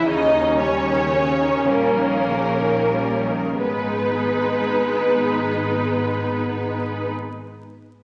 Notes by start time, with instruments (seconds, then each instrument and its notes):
0.05 double bass section D#2, viola section C#3 C#4, cello section D#3, violin section D#4 D#5
0.31 viola section D#3
0.56 cello section C#3, viola section G3, violin section C#4 C#5
0.84 viola section D#3
1.11 viola section C#3
1.41 viola section D#3
1.68 double bass section A#1, cello section A#2, viola section G3, violin section A#3 A#4
1.98 viola section D#3
2.28 viola section C#3
2.60 viola section D#3
2.93 viola section G3
3.27 viola section D#3
3.58 double bass section G#1, viola section G#3 D#4, cello section B3, violin section B4